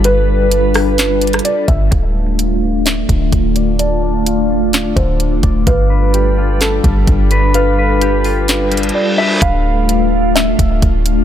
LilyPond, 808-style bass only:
\new Staff \with { instrumentName = "808-style bass" } { \clef bass \time 4/4 \key d \dorian \tempo 4 = 128 g,,2. r8 g,,8 | d,,2~ d,,8 d,,8 d,,4~ | d,,2~ d,,8 d,,4 d,,8 | g,,2~ g,,8 g,,8 g,,4~ |
g,,2. r4 | d,,2~ d,,8 d,,8 d,,4 | }